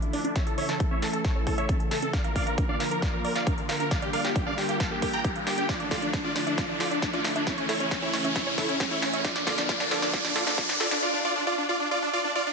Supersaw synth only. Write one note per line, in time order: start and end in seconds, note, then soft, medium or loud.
0.13 0.20 D4 medium
0.25 0.31 D4 medium
0.36 0.43 C#5 medium
0.36 0.43 E5 loud
0.46 0.54 A4 medium
0.58 0.65 C#5 medium
0.58 0.65 E5 medium
0.69 0.76 A4 medium
0.80 0.87 A4 medium
0.91 0.98 C#5 medium
0.91 0.98 E5 medium
1.02 1.09 A4 medium
1.13 1.20 A4 medium
1.25 1.32 A4 medium
1.25 1.32 C#5 medium
1.36 1.43 A4 medium
1.47 1.54 A4 medium
1.58 1.65 C#5 medium
1.58 1.65 E5 medium
1.69 1.76 A4 medium
1.91 1.98 A4 medium
2.02 2.09 A4 medium
2.13 2.20 D5 medium
2.13 2.20 F5 medium
2.24 2.31 A#4 medium
2.36 2.43 D5 medium
2.36 2.43 F5 medium
2.47 2.54 A#4 medium
2.58 2.65 A#4 medium
2.69 2.76 D5 medium
2.69 2.76 F5 medium
2.80 2.87 A#4 medium
2.91 2.98 A#4 medium
3.02 3.09 D5 medium
3.02 3.09 F5 medium
3.13 3.20 A#4 medium
3.24 3.31 A#4 medium
3.35 3.42 D5 medium
3.35 3.42 F5 medium
3.47 3.54 A#4 medium
3.69 3.76 A#4 medium
3.80 3.87 A#4 medium
3.91 3.98 D5 medium
3.91 3.98 F5 loud
4.02 4.09 G4 medium
4.13 4.20 D5 medium
4.13 4.20 F5 medium
4.24 4.31 G4 medium
4.35 4.42 G4 medium
4.46 4.54 D5 medium
4.46 4.54 F5 medium
4.58 4.65 G4 medium
4.69 4.76 G4 medium
4.80 4.87 F5 medium
4.80 4.87 A5 medium
4.91 4.98 G4 medium
5.02 5.09 G4 medium
5.13 5.20 G5 medium
5.13 5.20 A#5 medium
5.24 5.31 G4 medium
5.47 5.54 G4 medium
5.58 5.65 G4 medium
5.69 5.76 F4 medium
5.69 5.76 D5 medium
5.80 5.87 D4 medium
5.91 5.98 F4 medium
5.91 5.98 D5 medium
6.02 6.09 D4 medium
6.13 6.20 D4 medium
6.24 6.31 F4 medium
6.24 6.31 D5 medium
6.36 6.43 D4 medium
6.47 6.54 D4 medium
6.58 6.65 F4 medium
6.58 6.65 D5 medium
6.69 6.76 D4 medium
6.80 6.87 F4 medium
6.80 6.87 D5 medium
6.91 6.98 D4 medium
7.02 7.09 D4 medium
7.13 7.20 F4 medium
7.13 7.20 D5 medium
7.24 7.31 D4 medium
7.36 7.43 D4 medium
7.47 7.54 E4 medium
7.47 7.54 C#5 medium
7.58 7.65 C#4 medium
7.69 7.76 E4 medium
7.69 7.76 C#5 medium
7.80 7.87 C#4 medium
7.91 7.98 C#4 medium
8.02 8.09 E4 medium
8.02 8.09 C#5 medium
8.13 8.20 C#4 medium
8.25 8.32 C#4 medium
8.36 8.43 E4 medium
8.36 8.43 C#5 medium
8.47 8.54 C#4 medium
8.58 8.65 E4 medium
8.58 8.65 C#5 medium
8.69 8.76 C#4 medium
8.80 8.87 C#4 medium
8.91 8.98 E4 medium
8.91 8.98 C#5 medium
9.02 9.09 C#4 medium
9.13 9.20 C#4 medium
9.25 9.32 F4 medium
9.25 9.32 D5 loud
9.36 9.43 D4 medium
9.47 9.54 F4 medium
9.47 9.54 D5 medium
9.58 9.65 D4 medium
9.69 9.76 F4 medium
9.69 9.76 D5 loud
9.80 9.87 D4 medium
9.91 9.98 F4 medium
9.91 9.98 D5 medium
10.03 10.09 D4 medium
10.14 10.20 F4 medium
10.14 10.20 D5 loud
10.25 10.32 D4 medium
10.36 10.43 F4 medium
10.36 10.43 D5 medium
10.47 10.54 D4 medium
10.58 10.65 F4 medium
10.58 10.65 D5 loud
10.69 10.76 D4 medium
10.80 10.87 F4 medium
10.80 10.87 D5 loud
10.91 10.98 D4 medium
11.03 11.09 F4 medium
11.03 11.09 D5 loud
11.13 11.20 D4 medium
11.25 11.32 F4 medium
11.25 11.32 D5 loud
11.36 11.43 D4 medium
11.47 11.54 F4 medium
11.47 11.54 D5 loud
11.58 11.65 D4 medium
11.69 11.76 F4 medium
11.69 11.76 D5 loud
11.80 11.87 D4 medium
11.91 11.98 F4 medium
11.91 11.98 D5 loud
12.02 12.09 D4 medium
12.13 12.20 F4 medium
12.13 12.20 D5 loud
12.24 12.31 D4 medium
12.35 12.43 F4 medium
12.35 12.43 D5 loud
12.47 12.53 D4 medium